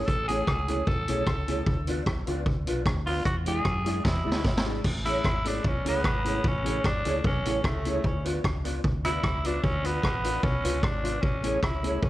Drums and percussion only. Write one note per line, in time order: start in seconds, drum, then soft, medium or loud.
0.08 kick loud
0.08 hi-hat pedal medium
0.28 closed hi-hat loud
0.47 kick loud
0.47 cross-stick loud
0.68 closed hi-hat medium
0.87 kick loud
1.08 closed hi-hat loud
1.27 kick loud
1.27 cross-stick loud
1.48 closed hi-hat loud
1.66 kick loud
1.87 closed hi-hat medium
2.06 kick loud
2.06 cross-stick loud
2.27 closed hi-hat medium
2.46 kick loud
2.67 closed hi-hat loud
2.86 kick loud
2.86 cross-stick loud
3.07 open hi-hat medium
3.25 kick loud
3.25 hi-hat pedal medium
3.46 closed hi-hat medium
3.65 kick loud
3.65 cross-stick loud
3.86 closed hi-hat loud
4.05 kick loud
4.05 snare medium
4.32 snare medium
4.45 kick loud
4.45 snare medium
4.57 snare loud
4.84 kick loud
4.84 crash loud
5.05 closed hi-hat medium
5.24 kick loud
5.24 cross-stick loud
5.45 closed hi-hat loud
5.64 kick loud
5.86 closed hi-hat loud
6.04 kick loud
6.04 cross-stick loud
6.25 closed hi-hat loud
6.44 kick loud
6.66 closed hi-hat medium
6.84 kick loud
6.84 cross-stick loud
7.05 closed hi-hat loud
7.24 kick loud
7.45 closed hi-hat loud
7.64 kick loud
7.64 cross-stick loud
7.85 closed hi-hat medium
8.04 kick loud
8.25 closed hi-hat medium
8.44 kick loud
8.44 cross-stick loud
8.65 closed hi-hat medium
8.84 kick loud
9.05 closed hi-hat loud
9.24 kick loud
9.24 cross-stick loud
9.45 closed hi-hat loud
9.64 kick loud
9.85 closed hi-hat medium
10.03 kick loud
10.03 cross-stick loud
10.24 closed hi-hat loud
10.43 kick loud
10.65 closed hi-hat loud
10.83 kick loud
10.83 cross-stick loud
11.05 closed hi-hat medium
11.23 kick loud
11.44 closed hi-hat loud
11.63 kick loud
11.63 cross-stick loud
11.84 closed hi-hat medium
12.02 kick loud